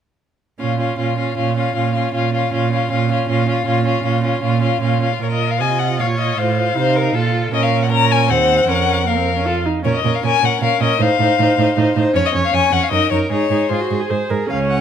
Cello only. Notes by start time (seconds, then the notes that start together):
0.60 A#2
0.99 A#2
1.38 A#2
1.76 A#2
2.15 A#2
2.53 A#2
2.92 A#2
3.29 A#2
3.67 A#2
4.04 A#2
4.43 A#2
4.81 A#2
5.21 A#2
5.60 C3
6.00 A#2
6.38 A2
6.76 C3
7.15 A#2
7.53 A#2
8.29 D#2
8.68 F2
9.85 A#2
10.04 A#2
10.24 A#2
10.43 A#2
10.62 A#2
10.81 A#2
11.00 A2
11.19 A2
11.39 A2
11.58 A2
11.77 A2
11.96 A2
12.15 F2
12.34 F2
12.53 F2
12.72 F2
12.91 F#2
13.11 F#2
13.30 G#2
13.50 G#2
13.70 G#2
13.91 G#2
14.10 G#2
14.30 G#2
14.50 C#2